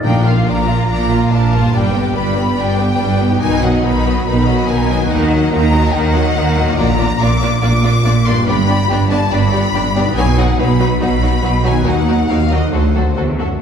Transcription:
Already playing: harp A#2 D4 F4
0.00 viola section F3 D4, harp A#4, violin section A#4 G5
0.04 double bass section A#1, cello section A#2, timpani A#2, violin section D5
0.25 viola section A#3 F4, violin section F4 F5
0.46 double bass section A#1, cello section A#2, viola section F3 D4, violin section A#4 D5 A#5
0.67 viola section A#3 F4, violin section F4 F5
0.88 double bass section A#1, cello section A#2, viola section F3 D4, violin section A#4 D5 A#5
1.09 viola section A#3 F4, violin section F4 F5
1.31 double bass section A#1, cello section A#2, viola section F3 D4, violin section A#4 D5 A5
1.52 harp G2, viola section A#3 F4, violin section F4 F5
1.59 harp D4
1.64 harp G4
1.69 harp B4
1.73 double bass section G1, cello section G2, viola section G3 D4, violin section B4 D5 G5
1.94 viola section B3, violin section G4 B4
2.14 double bass section G1, cello section G2, viola section G3 D4, violin section B4 D5 B5
2.36 viola section B3, violin section G4 B4
2.56 double bass section G1, cello section G2, viola section G3 D4, violin section B4 D5 G5
2.77 viola section B3, violin section G4 B4
2.98 double bass section G1, cello section G2, viola section G3 D4, violin section B4 D5
3.20 viola section B3, violin section G4 B4
3.24 harp B2
3.28 harp D#4
3.33 harp F#4
3.37 harp B4
3.41 double bass section B1, cello section B2, viola section D#3 D#4, violin section D#4 B4 G#5
3.61 viola section F#3 B3, violin section F#4 D#5 F#5
3.84 double bass section B1, cello section B2, viola section D#3 D#4, violin section D#4 B4 B5
4.05 viola section F#3 B3, violin section F#4 D#5
4.25 double bass section B1, cello section B2, viola section D#3 D#4, violin section D#4 B4 B5
4.47 viola section F#3 B3, violin section F#4 D#5
4.67 double bass section B1, cello section B2, viola section D#3 D#4, violin section D#4 B4 G#5
4.90 harp D#3, viola section F#3 B3, violin section F#4 D#5
4.97 harp D#4
5.01 harp F#4
5.06 violin section D#4 A#4 F#5, harp A#4
5.10 double bass section D#2, cello section D#3, viola section A#3 D#4
5.31 viola section F#3 A#3, violin section F#4 D#5
5.51 double bass section D#2, cello section D#3, viola section A#3 D#4, violin section D#4 A#4 A#5
5.72 viola section F#3 A#3, violin section F#4 D#5
5.94 double bass section D#2, cello section D#3, viola section A#3 D#4, violin section D#4 A#4 F#5
6.15 viola section F#3 A#3, violin section F#4 D#5
6.36 double bass section D#2, cello section D#3, viola section A#3 D#4, violin section D#4 A#4
6.57 harp A#2, viola section F#3 A#3, violin section F#4 D#5
6.65 harp D4
6.69 harp F4
6.74 harp A#4, violin section D5
6.78 double bass section A#1, timpani A#2, cello section A#2, viola section A#3 D4, violin section F4 A#5
6.99 viola section A#3 D4, violin section F4 D5
7.21 double bass section A#1, cello section A#2, viola section A#3 D4, violin section F4 D5 D6
7.42 viola section A#3 D4, violin section F4 D5
7.62 double bass section A#1, cello section A#2, viola section A#3 D4, violin section F4 D5 D6
7.83 viola section A#3 D4, violin section F4 D5
8.04 double bass section A#1, cello section A#2, viola section A#3 D4, violin section F4 D5
8.26 harp G2, viola section A#3 D4, violin section F4 D5 C6
8.34 harp D4
8.38 harp G4
8.43 viola section B3 D4, harp B4, violin section B5
8.48 double bass section G1, cello section G2, violin section G4 D5
8.68 viola section B3 D4, violin section G4 D5
8.89 double bass section G1, cello section G2, viola section B3 D4, violin section G4 D5
9.11 viola section B3 D4, violin section G4 D5 A5
9.32 double bass section G1, cello section G2, viola section B3 D4, violin section G4 D5 B5
9.51 viola section B3 D4, violin section G4 D5
9.74 double bass section G1, cello section G2, viola section B3 D4, violin section G4 D5
9.95 harp B2, viola section B3 D4, violin section G4 D5
10.03 harp D#4
10.07 harp F#4
10.12 harp B4
10.17 double bass section B1, cello section B2, viola section F#3 D#4, violin section F#4 B4 G#5
10.37 viola section F#3 D#4, violin section F#4 B4 F#5
10.58 double bass section B1, cello section B2, viola section F#3 D#4, violin section F#4 B4 B5
10.79 viola section F#3 D#4, violin section F#4 B4
11.01 double bass section B1, cello section B2, viola section F#3 D#4, violin section F#4 B4 B5
11.21 viola section F#3 D#4, violin section F#4 B4
11.42 double bass section B1, cello section B2, viola section F#3 D#4, violin section F#4 B4
11.63 viola section F#3 D#4, violin section F#4 B4 G#5
11.68 harp D#3
11.72 harp D#4
11.77 harp F#4
11.81 violin section F#4 A#4, harp A#4
11.86 cello section D#2, double bass section D#2, viola section F#3 D#4, violin section F#5
12.07 viola section F#3 D#4, violin section F#4 A#4
12.29 cello section D#2, double bass section D#2, viola section F#3 D#4, violin section F#4 A#4 F5
12.50 viola section F#3 D#4, violin section F#4 A#4 D#5
12.55 harp D3
12.60 harp C4
12.64 harp F#4
12.69 cello section D2, viola section F#3 F#4, harp C5, violin section C5
12.73 double bass section D2, violin section F#4 A4
12.95 viola section F#3 F#4, violin section F#4 A4
13.16 double bass section D2, cello section E2, viola section F#3 F#4, violin section F#4 A4
13.38 cello section F#2, viola section F#3 F#4, violin section F#4 A4

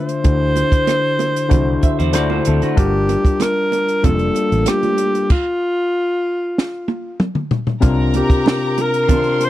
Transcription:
Already playing: tine electric piano D3 D4 F4 C5 E5, alto saxophone C5
0.09 closed hi-hat
0.24 fingered electric bass D2, tine electric piano D3 D4 E4 F#4 C5, kick, closed hi-hat
0.56 closed hi-hat, muted conga
0.72 kick, closed hi-hat
0.87 cross-stick, closed hi-hat, high conga
1.19 closed hi-hat, muted conga
1.36 closed hi-hat
1.48 fingered electric bass C2, tine electric piano D3 D4 E4 F#4 C5, kick, closed hi-hat, low conga
1.83 clean electric guitar E5, kick, closed hi-hat
1.99 fingered electric bass E2, clean electric guitar E4 C5, closed hi-hat
2.13 fingered electric bass D2, tine electric piano D3 D4 E4 F#4 C5, clean electric guitar F#4 D5, cross-stick, closed hi-hat, high conga
2.30 clean electric guitar E4 C5, high conga
2.45 fingered electric bass D2, clean electric guitar C4 A4, closed hi-hat
2.62 fingered electric bass D3, clean electric guitar A3 F#4, closed hi-hat
2.76 fingered electric bass G1, tine electric piano G3 D4 F4 A#4 A5, alto saxophone G4, kick, closed hi-hat
3.09 closed hi-hat, muted conga
3.25 kick, closed hi-hat
3.40 alto saxophone A#4, cross-stick, closed hi-hat, high conga
3.72 closed hi-hat, muted conga
3.88 closed hi-hat
4.03 fingered electric bass F1, tine electric piano G3 A#3 D4 F4 A4, alto saxophone A4, kick, closed hi-hat, low conga
4.19 closed hi-hat
4.35 closed hi-hat, muted conga
4.52 fingered electric bass A1, closed hi-hat
4.66 alto saxophone G4, cross-stick, closed hi-hat, high conga
4.83 closed hi-hat, high conga
4.98 closed hi-hat
5.15 closed hi-hat
5.30 alto saxophone F4, kick, crash
6.58 snare
6.88 high tom
7.20 mid tom
7.35 mid tom
7.51 floor tom
7.67 floor tom
7.80 fingered electric bass C2, tine electric piano C3 C4 D4 F4 A#4, violin section A#4 A#5, kick, closed hi-hat
8.14 alto saxophone G4, closed hi-hat, muted conga
8.30 kick, closed hi-hat
8.46 snare, high conga
8.78 alto saxophone A#4, closed hi-hat, muted conga
8.94 closed hi-hat
9.08 tine electric piano C3 C4 D4 F4 A5, violin section C5 C6, kick, closed hi-hat, low conga
9.24 closed hi-hat
9.40 closed hi-hat, muted conga
9.45 alto saxophone C5

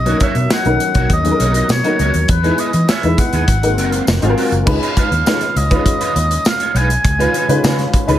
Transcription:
Already playing: fingered electric bass B1, oboe D#5
0.05 grand piano F#3 B3 C#4 D#4 A#4, clean electric guitar A#3 D#4 F#4 C#5, closed hi-hat
0.20 clean electric guitar A#3 D#4 F#4 C#5, oboe E5, kick, closed hi-hat
0.35 fingered electric bass B2, muted clean electric guitar stroke, closed hi-hat
0.50 clean electric guitar A#3 D#4 F#4 D#5, oboe F#5, snare, tambourine
0.65 fingered electric bass B1, grand piano F#3 B3 C#4 D#4 A#4, muted clean electric guitar stroke, closed hi-hat
0.80 muted clean electric guitar stroke, closed hi-hat
0.95 fingered electric bass B1, clean electric guitar A#3 D#4 F#4 C#5, kick, closed hi-hat
1.10 fingered electric bass D#2, oboe D#5, muted clean electric guitar stroke, kick, closed hi-hat
1.24 grand piano F#3 B3 C#4 D#4 G#4, muted clean electric guitar stroke, closed hi-hat
1.31 grand piano A#4
1.40 fingered electric bass B1, clean electric guitar A#3 D#4 F#4 C#5, closed hi-hat
1.54 clean electric guitar A#3 D#4 F#4 D#5, closed hi-hat
1.69 fingered electric bass B2, oboe C#5, muted clean electric guitar stroke, snare, tambourine
1.83 grand piano F#3 B3 C#4 D#4 A#4, clean electric guitar A#3 D#4 F#4 D#5, closed hi-hat
1.98 fingered electric bass C#2, clean electric guitar A#3 D#4 F#4 C#5, closed hi-hat
2.13 fingered electric bass D#2, muted clean electric guitar stroke, closed hi-hat
2.28 fingered electric bass E2, oboe B4, muted clean electric guitar stroke, kick, closed hi-hat
2.43 grand piano G#3 B3 D#4 E4 B4, clean electric guitar B3 D#4 G#4 B4, closed hi-hat
2.58 clean electric guitar B3 D#4 G#4 B4, oboe D#5, closed hi-hat
2.73 fingered electric bass E3, muted clean electric guitar stroke, closed hi-hat
2.88 clean electric guitar B3 D#4 G#4 C#5, oboe E5, snare, tambourine
3.03 fingered electric bass E2, grand piano G#3 B3 D#4 E4 B4, muted clean electric guitar stroke, closed hi-hat
3.18 oboe F#5, muted clean electric guitar stroke, kick, closed hi-hat
3.33 fingered electric bass D#2, clean electric guitar B3 D#4 G#4 B4, closed hi-hat
3.48 fingered electric bass G#1, muted clean electric guitar stroke, kick, closed hi-hat
3.63 grand piano G#3 A#3 D#4 F#4 A#4, muted clean electric guitar stroke, closed hi-hat
3.70 grand piano C4
3.78 fingered electric bass F#1, clean electric guitar F#3 C4 F4 A#4, closed hi-hat
3.92 clean electric guitar F#3 C4 F4 C5, closed hi-hat
4.07 fingered electric bass F1, muted clean electric guitar stroke, snare, tambourine
4.22 fingered electric bass G#1, clean electric guitar F#3 C4 F4 C5, grand piano G#3 C4 F4 F#4 G#4, closed hi-hat
4.30 grand piano A#4
4.37 clean electric guitar F#3 C4 F4 A#4, open hi-hat
4.51 fingered electric bass F#1, muted clean electric guitar stroke, closed hi-hat
4.65 fingered electric bass C#2, grand piano G#3 C#4 D#4 F4 B4, muted clean electric guitar stroke, kick, crash
4.81 clean electric guitar G#3 D#4 F4 B4, closed hi-hat
4.97 clean electric guitar G#3 D#4 F4 B4, oboe F5, kick, closed hi-hat
5.11 fingered electric bass D#2, muted clean electric guitar stroke, closed hi-hat
5.26 grand piano G#3 C#4 D#4 F4 B4, clean electric guitar G#3 D#4 F4 C#5, snare, tambourine
5.41 muted clean electric guitar stroke, snare, closed hi-hat
5.56 fingered electric bass C#2, oboe D#5, muted clean electric guitar stroke, closed hi-hat
5.70 grand piano G#3 C#4 D#4 F4 B4, clean electric guitar G#3 D#4 F4 B4, kick, closed hi-hat
5.86 muted clean electric guitar stroke, kick, closed hi-hat
6.00 clean electric guitar G#3 D#4 F4 B4, closed hi-hat
6.16 fingered electric bass D#2, muted clean electric guitar stroke, closed hi-hat
6.30 muted clean electric guitar stroke, closed hi-hat
6.45 oboe F5, muted clean electric guitar stroke, snare, tambourine
6.60 clean electric guitar G#3 D#4 F4 C#5, closed hi-hat
6.74 fingered electric bass B1, clean electric guitar G#3 D#4 F4 B4, oboe G#5, closed hi-hat
6.90 muted clean electric guitar stroke, closed hi-hat
7.04 fingered electric bass C#2, muted clean electric guitar stroke, kick, closed hi-hat
7.18 grand piano G#3 C#4 D#4 F4 B4, clean electric guitar G#3 D#4 F4 B4, closed hi-hat
7.33 clean electric guitar G#3 D#4 F4 B4, closed hi-hat
7.48 fingered electric bass C#3, grand piano G#3 C#4 D#4 F4 B4, muted clean electric guitar stroke, closed hi-hat
7.63 fingered electric bass C#3, clean electric guitar G#3 D#4 F4 C#5, grand piano G#3 C#4 D#4 F4 B4, snare, tambourine
7.78 muted clean electric guitar stroke, snare, closed hi-hat
7.93 muted clean electric guitar stroke, kick, closed hi-hat
8.07 fingered electric bass C#2, grand piano G#3 C#4 D#4 F4 B4, clean electric guitar G#3 D#4 F4 B4, closed hi-hat

